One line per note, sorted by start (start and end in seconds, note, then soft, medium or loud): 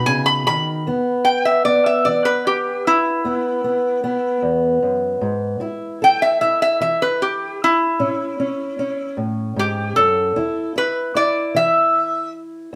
0.00 0.83 D#4 medium
0.00 0.83 F#4 medium
0.06 0.47 C#3 medium
0.06 0.26 G#5 loud
0.26 0.46 B5 medium
0.47 0.87 D#3 medium
0.47 0.86 B5 loud
0.87 1.58 E2 medium
0.87 1.65 B3 medium
1.25 1.45 G5 medium
1.45 1.64 E5 medium
1.65 3.24 B3 medium
1.65 1.85 D5 medium
1.86 2.05 E5 medium
2.05 2.77 E3 medium
2.05 2.25 D5 medium
2.25 2.45 B4 medium
2.47 2.85 G4 medium
2.87 4.40 E4 medium
3.24 3.96 E2 medium
3.24 3.63 B3 medium
3.64 4.03 B3 medium
4.04 5.60 B3 medium
4.42 4.82 E2 medium
4.83 5.21 F#2 medium
5.21 5.60 G#2 medium
5.60 6.32 A2 medium
5.60 6.41 E4 medium
6.02 10.32 A4 medium
6.02 6.22 G5 medium
6.22 6.40 E5 medium
6.41 10.32 E4 medium
6.41 6.60 E5 medium
6.62 6.80 E5 medium
6.81 7.52 E3 medium
6.81 7.00 E5 medium
7.02 7.20 B4 medium
7.22 7.59 G4 medium
7.64 9.16 E4 medium
7.99 8.70 A2 medium
7.99 8.38 C#4 medium
8.40 8.78 C#4 medium
8.79 10.32 C#4 medium
9.17 9.56 A2 medium
9.56 9.96 G#2 medium
9.56 9.96 G4 medium
9.96 10.36 F#2 medium
9.96 10.73 A4 medium
10.36 11.07 E2 medium
10.36 10.75 E4 medium
10.76 11.15 E4 medium
10.76 11.15 B4 medium
11.15 12.73 E4 medium
11.15 11.54 D5 medium
11.55 12.26 E3 medium
11.55 12.32 E5 medium